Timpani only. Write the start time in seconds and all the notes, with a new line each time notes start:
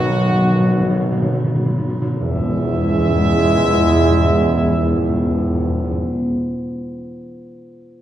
0.01 B2
0.11 B2
0.21 B2
0.31 B2
0.41 B2
0.50 B2
0.60 B2
0.70 B2
0.80 B2
0.90 B2
1.01 B2
1.12 B2
1.22 B2
1.34 B2
1.44 B2
1.55 B2
1.66 B2
1.78 B2
1.89 B2
2.02 B2
2.21 E2
2.29 E2
2.36 E2
2.43 E2
2.49 E2
2.56 E2
2.64 E2
2.71 E2
2.78 E2
2.86 E2
2.92 E2
3.00 E2
3.07 E2
3.15 E2
3.22 E2
3.29 E2
3.37 E2
3.44 E2
3.51 E2
3.59 E2
3.66 E2
3.73 E2
3.80 E2
3.87 E2
3.95 E2
4.02 E2
4.09 E2
4.16 E2
4.24 E2
4.31 E2
4.39 E2
4.46 E2
4.53 E2
4.60 E2
4.67 E2
4.74 E2
4.81 E2
4.88 E2
4.95 E2
5.02 E2
5.09 E2
5.16 E2
5.24 E2
5.31 E2
5.39 E2
5.46 E2
5.54 E2
5.61 E2
5.69 E2
5.77 E2
5.84 E2
5.92 E2